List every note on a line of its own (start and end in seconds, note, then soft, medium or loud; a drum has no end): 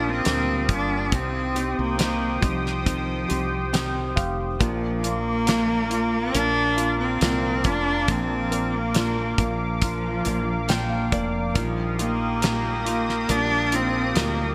0.00 0.21 A#1 loud
0.00 0.25 A#3 soft
0.00 0.25 A#3 medium
0.00 0.26 D#4 medium
0.00 0.25 F4 medium
0.00 0.68 F4 medium
0.00 1.10 G4 medium
0.00 1.09 F5 medium
0.00 1.10 D#6 medium
0.09 0.71 C4 loud
0.25 0.66 D2 medium
0.25 1.11 A#2 medium
0.25 1.12 G3 medium
0.25 1.10 A#3 medium
0.25 1.12 A#3 medium
0.25 1.13 F4 medium
0.25 snare loud
0.25 closed hi-hat medium
0.68 1.09 G1 medium
0.68 1.11 F4 medium
0.68 kick medium
0.68 closed hi-hat medium
0.73 1.16 D4 loud
1.12 1.74 C2 loud
1.12 1.56 C3 medium
1.12 1.56 D#3 medium
1.12 1.96 C4 medium
1.12 1.56 C4 medium
1.12 1.79 C4 loud
1.12 1.55 D#4 medium
1.12 1.54 G4 medium
1.12 4.57 C5 medium
1.12 4.58 G5 medium
1.12 4.57 D#6 medium
1.12 kick loud
1.12 closed hi-hat medium
1.55 1.98 C4 soft
1.55 1.99 D#4 medium
1.55 2.40 G4 medium
1.55 1.99 G4 medium
1.55 closed hi-hat medium
1.79 2.39 C2 medium
1.79 2.46 A#3 loud
1.98 2.42 C3 medium
1.98 2.43 D#3 medium
1.98 2.84 C4 medium
1.98 2.43 C4 medium
1.98 2.42 D#4 medium
1.98 2.40 G4 medium
1.98 snare loud
1.98 closed hi-hat loud
2.41 3.26 C2 loud
2.41 4.18 F3 medium
2.41 2.84 C4 soft
2.41 2.85 D#4 soft
2.41 3.27 G4 medium
2.41 2.86 G4 soft
2.41 kick loud
2.41 closed hi-hat medium
2.66 snare soft
2.85 3.29 D#3 medium
2.85 3.30 C4 medium
2.85 3.72 C4 medium
2.85 3.29 D#4 medium
2.85 3.27 G4 medium
2.85 kick medium
2.85 closed hi-hat loud
3.28 4.13 C2 medium
3.28 3.72 C4 soft
3.28 3.73 D#4 soft
3.28 3.73 G4 medium
3.28 4.15 G4 medium
3.28 closed hi-hat medium
3.73 4.59 C3 medium
3.73 4.59 D#3 medium
3.73 4.60 C4 medium
3.73 4.58 C4 medium
3.73 4.60 D#4 medium
3.73 4.61 G4 medium
3.73 4.14 G5 medium
3.73 snare loud
3.73 closed hi-hat medium
4.16 4.57 F1 medium
4.16 4.59 G4 medium
4.16 4.57 F5 medium
4.16 kick medium
4.16 closed hi-hat medium
4.59 6.30 A#1 loud
4.59 5.03 A#2 medium
4.59 5.04 F3 medium
4.59 5.06 F3 medium
4.59 5.45 A#3 medium
4.59 5.04 A#3 medium
4.59 5.03 D4 medium
4.59 5.02 F4 medium
4.59 11.53 A#4 medium
4.59 14.55 F5 medium
4.59 11.53 D6 medium
4.59 kick loud
4.59 closed hi-hat medium
5.03 6.36 A#3 loud
5.03 5.46 A#3 soft
5.03 5.47 D4 medium
5.03 5.47 F4 medium
5.03 5.89 F4 medium
5.03 closed hi-hat medium
5.47 5.90 A#2 medium
5.47 5.91 F3 medium
5.47 6.33 A#3 medium
5.47 5.91 A#3 medium
5.47 5.90 D4 medium
5.47 5.89 F4 medium
5.47 snare loud
5.47 closed hi-hat loud
5.90 6.33 A#3 soft
5.90 6.34 D4 soft
5.90 6.34 F4 medium
5.90 6.76 F4 medium
5.90 closed hi-hat medium
6.33 7.17 A#1 loud
6.33 6.77 F3 medium
6.33 7.20 A#3 medium
6.33 6.78 A#3 medium
6.33 6.99 D4 loud
6.33 6.77 D4 medium
6.33 6.76 F4 medium
6.33 closed hi-hat loud
6.77 7.21 A#3 soft
6.77 7.21 D4 soft
6.77 7.21 F4 medium
6.77 7.63 F4 medium
6.77 closed hi-hat medium
6.99 7.67 C4 loud
7.21 7.67 C2 medium
7.21 8.07 A#2 medium
7.21 8.08 F3 medium
7.21 8.49 A#3 medium
7.21 8.09 A#3 medium
7.21 8.08 D4 medium
7.21 8.09 F4 medium
7.21 snare loud
7.21 closed hi-hat medium
7.64 8.05 F1 medium
7.64 8.12 D4 loud
7.64 8.93 F4 medium
7.64 kick medium
7.64 closed hi-hat medium
8.08 9.35 A#1 loud
8.08 8.52 A#2 medium
8.08 11.52 F3 medium
8.08 8.52 F3 medium
8.08 8.52 A#3 medium
8.08 8.77 C4 loud
8.08 8.51 D4 medium
8.08 8.50 F4 medium
8.08 kick loud
8.08 closed hi-hat medium
8.51 9.37 A#3 medium
8.51 8.95 A#3 soft
8.51 8.95 D4 medium
8.51 8.95 F4 medium
8.51 closed hi-hat medium
8.75 9.41 A#3 loud
8.95 9.39 A#2 medium
8.95 9.39 F3 medium
8.95 9.39 A#3 medium
8.95 9.38 D4 medium
8.95 9.81 F4 medium
8.95 9.37 F4 medium
8.95 snare loud
8.95 closed hi-hat loud
9.38 10.21 A#1 medium
9.38 11.13 F3 medium
9.38 10.24 A#3 medium
9.38 9.81 A#3 soft
9.38 9.82 D4 soft
9.38 9.82 F4 medium
9.38 kick loud
9.38 closed hi-hat medium
9.81 10.25 F3 medium
9.81 10.26 A#3 medium
9.81 10.25 D4 medium
9.81 10.68 F4 medium
9.81 10.24 F4 medium
9.81 kick medium
9.81 closed hi-hat loud
10.25 11.09 A#1 medium
10.25 11.11 A#3 medium
10.25 10.68 A#3 medium
10.25 10.68 D4 soft
10.25 10.69 F4 medium
10.25 closed hi-hat medium
10.68 11.54 A#2 medium
10.68 11.56 F3 medium
10.68 11.56 A#3 loud
10.68 11.56 D4 medium
10.68 11.53 F4 medium
10.68 11.57 F4 medium
10.68 10.89 G5 medium
10.68 snare loud
10.68 closed hi-hat medium
10.89 11.10 F5 medium
11.12 11.53 F1 medium
11.12 11.53 A#3 medium
11.12 11.53 D5 medium
11.12 kick medium
11.12 closed hi-hat medium
11.54 13.26 A#1 loud
11.54 11.99 A#2 medium
11.54 12.04 F3 medium
11.54 11.99 G3 medium
11.54 12.40 A#3 medium
11.54 12.00 A#3 medium
11.54 11.99 D#4 medium
11.54 11.97 F4 medium
11.54 14.55 G4 medium
11.54 14.55 D#6 medium
11.54 kick loud
11.54 closed hi-hat medium
11.98 12.42 A#3 soft
11.98 13.31 A#3 loud
11.98 12.43 D#4 medium
11.98 12.42 F4 medium
11.98 12.84 F4 medium
11.98 closed hi-hat medium
12.42 12.86 A#2 medium
12.42 12.86 G3 medium
12.42 13.27 A#3 medium
12.42 12.86 A#3 medium
12.42 12.85 D#4 medium
12.42 12.84 F4 medium
12.42 snare loud
12.42 closed hi-hat loud
12.85 13.28 A#3 soft
12.85 13.30 D#4 soft
12.85 13.29 F4 medium
12.85 13.71 F4 medium
12.85 closed hi-hat medium
13.09 snare soft
13.28 14.13 A#1 loud
13.28 13.73 G3 medium
13.28 14.14 A#3 medium
13.28 13.73 A#3 medium
13.28 13.76 D4 loud
13.28 13.71 F4 medium
13.28 closed hi-hat loud
13.72 14.15 A#3 soft
13.72 14.19 C4 loud
13.72 14.15 D#4 soft
13.72 14.15 F4 medium
13.72 14.55 F4 medium
13.72 closed hi-hat medium
14.15 14.55 D2 medium
14.15 14.55 A#2 medium
14.15 14.55 G3 medium
14.15 14.55 A#3 medium
14.15 14.55 A#3 loud
14.15 14.55 D#4 medium
14.15 14.55 F4 medium
14.15 snare loud
14.15 closed hi-hat medium